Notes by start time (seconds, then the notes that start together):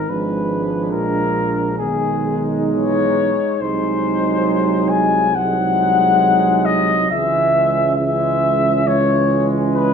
Already playing: D#3 A#4
0.08 G#1 F3 G#3 D4 B4
0.92 A#1 A#4
1.78 B1 D#3 G#3 D#4 G#4
2.73 E3 C#5
3.60 C2 F#3 G#3 D#4 C5
4.90 G#5
5.35 F#3 G#3 D#4 F#5
6.65 D#5
7.11 C#2 E3 G#3 C#4 E5
7.95 E3 G#3 C#4 E5
8.86 E3 G#3 C#4 C#5
9.75 B4